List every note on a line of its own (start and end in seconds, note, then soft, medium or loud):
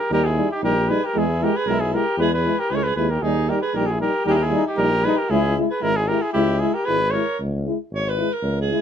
0.00 0.12 G4 medium
0.00 0.11 A#4 medium
0.10 0.39 D#2 loud
0.10 0.22 G3 medium
0.10 0.22 D#4 medium
0.10 0.28 G4 medium
0.10 0.26 A#4 medium
0.24 0.52 E4 medium
0.24 0.50 G#4 medium
0.37 0.47 G3 medium
0.37 0.47 D#4 medium
0.52 0.63 D#4 medium
0.52 0.63 G4 medium
0.62 0.91 A#1 medium
0.62 0.74 G3 medium
0.62 0.74 D#4 medium
0.62 0.92 G4 medium
0.62 0.90 A#4 medium
0.89 0.99 G3 medium
0.89 1.00 D#4 medium
0.89 1.05 G#4 medium
0.89 1.07 B4 medium
1.04 1.19 G4 medium
1.04 1.20 A#4 medium
1.15 1.44 E2 medium
1.15 1.26 G#3 medium
1.15 1.25 E4 medium
1.15 1.46 E4 medium
1.15 1.45 G#4 medium
1.40 1.53 G#3 medium
1.40 1.51 E4 medium
1.40 1.58 G4 medium
1.40 1.58 A#4 medium
1.56 1.73 G#4 medium
1.56 1.69 B4 medium
1.66 1.94 B1 medium
1.66 1.78 G#3 medium
1.66 1.78 E4 medium
1.66 1.82 A#4 medium
1.71 1.82 E4 medium
1.80 1.97 E4 medium
1.80 1.95 G#4 medium
1.93 2.04 G#3 medium
1.93 2.03 E4 medium
1.93 2.20 G4 medium
1.93 2.18 A#4 medium
2.17 2.46 E2 loud
2.17 2.30 G#3 medium
2.17 2.30 E4 medium
2.17 2.32 G#4 loud
2.17 2.31 B4 medium
2.33 2.60 G#4 medium
2.33 2.61 B4 medium
2.45 2.56 G#3 medium
2.45 2.55 E4 medium
2.58 2.73 G4 medium
2.58 2.71 A#4 medium
2.70 2.94 C#2 medium
2.70 2.82 G#3 medium
2.70 2.81 E4 soft
2.70 2.79 G#4 medium
2.70 2.77 B4 medium
2.75 2.88 A#4 medium
2.75 2.85 C#5 medium
2.83 2.96 G#4 medium
2.83 2.96 B4 medium
2.96 3.19 D#2 medium
2.96 3.08 G#3 soft
2.96 3.07 E4 medium
2.96 3.12 G#4 medium
2.96 3.12 B4 medium
3.10 3.24 G4 medium
3.10 3.24 A#4 medium
3.22 3.50 D#2 medium
3.22 3.35 G3 medium
3.22 3.51 D#4 medium
3.22 3.34 D#4 medium
3.22 3.51 G#4 medium
3.49 3.60 G3 medium
3.49 3.59 D#4 medium
3.49 3.61 G4 medium
3.49 3.61 A#4 medium
3.62 3.78 G#4 medium
3.62 3.76 B4 medium
3.73 4.02 A#1 medium
3.73 3.85 G3 medium
3.73 3.84 D#4 medium
3.73 3.92 G4 medium
3.73 3.88 A#4 medium
3.86 3.99 G#4 medium
3.91 4.01 E4 medium
4.01 4.11 G3 medium
4.01 4.11 D#4 medium
4.01 4.25 G4 medium
4.01 4.25 A#4 medium
4.25 4.54 D#2 medium
4.25 4.37 G3 medium
4.25 4.37 D#4 medium
4.25 4.32 G4 loud
4.25 4.31 A#4 medium
4.30 4.35 E4 medium
4.30 4.41 G4 loud
4.30 4.35 G#4 medium
4.30 4.42 A#4 medium
4.40 4.66 E4 medium
4.40 4.66 G#4 medium
4.51 4.62 G3 medium
4.51 4.64 D#4 medium
4.66 4.79 D#4 medium
4.66 4.79 G4 medium
4.77 5.06 A#1 medium
4.77 4.88 G3 medium
4.77 4.90 D#4 medium
4.77 5.05 G4 medium
4.77 5.06 A#4 loud
5.04 5.14 G3 medium
5.04 5.16 D#4 medium
5.04 5.17 G#4 medium
5.04 5.20 B4 medium
5.16 5.31 G4 medium
5.16 5.32 A#4 medium
5.29 5.59 C#2 loud
5.29 5.42 G#3 medium
5.29 5.56 E4 loud
5.29 5.42 E4 medium
5.29 5.57 G#4 medium
5.57 5.67 G#3 medium
5.57 5.68 E4 medium
5.70 5.83 G#4 medium
5.70 5.84 B4 medium
5.81 6.11 G#1 medium
5.81 5.93 G#3 medium
5.81 5.94 E4 medium
5.81 5.93 E4 medium
5.81 5.98 A#4 loud
5.94 6.09 E4 medium
5.94 6.10 G#4 medium
6.08 6.20 G#3 medium
6.08 6.20 E4 medium
6.08 6.22 G4 medium
6.08 6.24 A#4 medium
6.21 6.33 E4 medium
6.21 6.32 G#4 medium
6.33 6.63 C#2 loud
6.33 6.45 G#3 medium
6.33 6.60 E4 loud
6.33 6.45 E4 medium
6.33 6.61 G4 medium
6.59 6.73 G#3 medium
6.59 6.75 E4 medium
6.59 6.72 E4 medium
6.59 6.75 G#4 medium
6.74 6.86 G4 medium
6.74 6.87 A#4 medium
6.85 7.17 G#1 medium
6.85 6.98 E4 medium
6.85 7.15 G#4 medium
6.85 7.12 B4 loud
6.89 6.99 G#3 soft
7.11 7.24 G#3 soft
7.11 7.23 E4 medium
7.11 7.39 A#4 medium
7.11 7.38 C#5 medium
7.40 7.68 C#2 medium
7.66 7.77 G#3 medium
7.66 7.77 E4 medium
7.91 8.20 G#1 medium
7.91 8.10 C#5 medium
8.09 8.35 B4 medium
8.18 8.30 G#3 medium
8.18 8.28 E4 medium
8.33 8.59 A#4 medium
8.42 8.71 C#2 medium
8.62 8.81 G#4 medium
8.71 8.81 G#3 medium
8.71 8.81 E4 medium